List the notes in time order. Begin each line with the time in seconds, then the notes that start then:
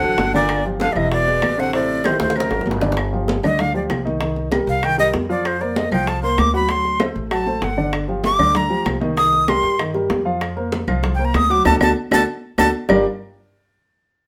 Already playing: D3 F#5
0.03 A1 F#3 F#4 A4, high bongo, high conga
0.18 G1, high bongo, low bongo, high conga
0.34 A#2 D3 D4 D5, high bongo, high conga
0.49 high bongo, high conga, claves
0.65 F3 F4 G4, high conga
0.80 D3 F5, high bongo, high conga
0.91 E1 A#2 D5
0.96 C3 E3 E4 D#5 E5, high conga, claves
1.11 B2 D5, high bongo, high conga
1.27 G#3 G#4 B4, high conga
1.42 A1, high bongo, low bongo, high conga, claves
1.58 C3 D3 C4 C5 F#5, high conga
1.73 A2 C3 C4 C5 D5, high bongo, high conga
1.90 high conga
2.04 A2 D#3 D#4 G4 C5, high bongo, high conga, claves
2.20 D2 A2 C5, high bongo, high conga
2.30 high bongo
2.36 F#2 C3 C4 A#4 C5, high conga, claves
2.40 high bongo
2.50 G#1 F#3 F#4 A#4, high bongo, high conga
2.61 low bongo
2.66 G1, high conga
2.71 low bongo
2.81 D3 D4 D5, low bongo, high conga
2.92 low bongo
2.97 high bongo, high conga, claves
3.13 F3 F4 G4, high conga
3.28 high bongo, high conga
3.43 D2 D3 D4 D5 D#5, high conga, low conga, claves
3.59 F5, high bongo, high conga, low conga
3.74 F3 F4 G4 D5, high conga
3.90 C2, high bongo, low bongo, high conga, claves
4.05 D#3 D#4 D#5, high conga
4.20 D#3 D#4 D#5, high bongo, high conga
4.36 high bongo, high conga
4.51 G3 G4 A#4, high bongo, high conga, claves
4.67 C2 F5, high bongo
4.83 D#3 D#4 D#5 G5, high bongo, high conga, claves
4.98 G3 G4 A#4 D#5, high bongo, high conga
5.14 F2, high bongo, low bongo, high conga
5.29 F3 F4 D5 F5
5.45 C5, high bongo, high conga, claves
5.61 A#3 A#4 C5 D5, high conga
5.76 D#5, high bongo, high conga
5.91 C2 F3 F4 F5 G5, high conga, low conga, claves
6.07 A5, high bongo, high conga
6.22 A#3 A#4 C5 C6, high conga
6.38 D2 D6, high bongo, low bongo, high conga, claves
6.53 F#3 F#4 F#5 B5
6.69 F#3 F#4 F#5 C6, high bongo, high conga
6.85 high bongo, high conga
7.00 A3 A4 C5, high bongo, high conga, claves
7.15 A1, high bongo
7.31 F#3 F#4 F#5 A5, high bongo, high conga, claves
7.46 A3 A4 C5, high bongo, high conga
7.62 G1 F#5, high bongo, low bongo, high conga
7.77 D3 D4 D5
7.93 high bongo, high conga, claves
8.08 F3 F4 G4, high conga
8.24 D6, high bongo, high conga
8.39 D2 D3 D4 D5, high conga, low conga, claves
8.55 A#5, high bongo, high conga, low conga
8.70 F3 F4 G4, high conga
8.85 C2, high bongo, low bongo, high conga, claves
9.01 D#3 D#4 D#5, high conga
9.17 D#3 D#4 D#5 D#6, high bongo, high conga
9.33 high bongo, high conga
9.48 G3 G4 A#4 C6, high bongo, high conga, claves
9.63 G2, high bongo
9.79 D#3 D#4 D#5, high bongo, high conga, claves
9.94 G3 G4 A#4, high bongo, high conga
10.10 F2, high bongo, low bongo, high conga
10.25 F3 F4 F5
10.41 high bongo, high conga, claves
10.56 A#3 A#4 C5, high conga
10.72 high bongo, high conga
10.88 C2 F3 F4 F5, high conga, low conga, claves
11.03 high bongo, high conga, low conga
11.15 A#3 G5, high conga
11.19 A#4 C5
11.25 A#5
11.34 D2 D#6, high bongo, low bongo, high conga, claves
11.50 F#3 F#4 F#5 D6
11.65 D2 D4 F#4 A4 A5, low bongo, high conga, claves
11.80 D2 D4 F#4 A4 A5, low bongo, high conga, claves
12.11 D2 D4 F#4 A4 A5, low bongo, high conga, claves
12.58 D2 D4 F#4 A4 A5, low bongo, high conga, claves
12.89 G1 G3 D4 F4 G4 A#4 D5, low bongo, low conga, claves